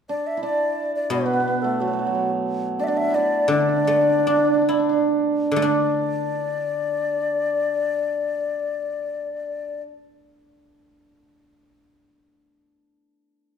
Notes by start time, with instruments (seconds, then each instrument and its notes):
0.09 hammered dulcimer D4, xiao D5
0.27 xiao E5
0.37 hammered dulcimer E4
0.43 hammered dulcimer D4, xiao D5
0.95 xiao D5
1.10 guzheng B2, hammered dulcimer B3, xiao B4
1.17 hammered dulcimer B3
1.26 hammered dulcimer B3
1.33 hammered dulcimer B3
1.40 hammered dulcimer B3
1.48 hammered dulcimer B3
1.62 hammered dulcimer A3, xiao A4
1.80 hammered dulcimer F#3, xiao F#4
1.87 hammered dulcimer F#3
1.93 hammered dulcimer F#3
1.99 hammered dulcimer F#3
2.07 hammered dulcimer F#3
2.15 hammered dulcimer F#3
2.79 hammered dulcimer D4, xiao D5
2.84 xiao D5 E5
2.88 hammered dulcimer D4
2.97 xiao E5
3.10 hammered dulcimer E4
3.15 hammered dulcimer D4, xiao D5
3.48 guzheng D3, xiao D5
3.52 hammered dulcimer D4
3.60 hammered dulcimer D4
3.69 hammered dulcimer D4
3.76 hammered dulcimer D4
3.84 guzheng A3, hammered dulcimer D4
3.90 hammered dulcimer D4
4.01 hammered dulcimer D4
4.09 hammered dulcimer D4
4.19 hammered dulcimer D4
4.26 hammered dulcimer D4, guzheng D4
4.36 hammered dulcimer D4
4.45 hammered dulcimer D4
4.54 hammered dulcimer D4
4.62 hammered dulcimer D4
4.69 hammered dulcimer D4, guzheng E4
4.79 hammered dulcimer D4
4.89 hammered dulcimer D4
5.51 guzheng D3
5.56 guzheng A3, xiao D5
5.62 guzheng D4, hammered dulcimer D4